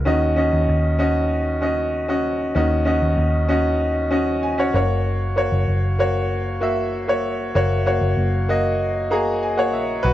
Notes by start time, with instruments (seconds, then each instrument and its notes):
0.05 picked electric bass D#2, upright piano D#3 C#4 F#4 D#5
0.36 upright piano C#4 F#4 D#5
0.53 picked electric bass D#2
0.69 picked electric bass D#2
0.99 upright piano C#4 F#4 D#5
1.61 upright piano C#4 F#4 D#5
2.08 upright piano C#4 F#4 D#5
2.55 picked electric bass D#2, upright piano D#3 C#4 F#4 D#5
2.85 upright piano C#4 F#4 D#5
3.02 picked electric bass D#2
3.18 picked electric bass D#2
3.49 upright piano C#4 F#4 D#5
4.11 upright piano C#4 F#4 D#5
4.43 upright piano G#5
4.58 upright piano C#4 F#4 C#5 F#5
4.74 picked electric bass F#1, upright piano A#3 F#4 C#5
5.36 upright piano A#3 F#4 C#5
5.52 picked electric bass F#1
5.68 picked electric bass F#1
5.99 upright piano A#3 F#4 C#5
6.61 upright piano A#3 F#4 E5
7.08 upright piano A#3 F#4 C#5
7.55 picked electric bass F#1, upright piano A#3 F#4 C#5
7.86 upright piano A#3 F#4 C#5
8.01 picked electric bass F#1
8.17 picked electric bass F#1
8.49 upright piano A#3 F#4 D#5
9.11 upright piano A#3 F#4 G#4 A#5
9.43 upright piano G#5
9.57 upright piano A#3 F#4 C#5 F#5
9.73 picked electric bass A#1, upright piano E5
10.03 picked electric bass B1, upright piano F#4 B4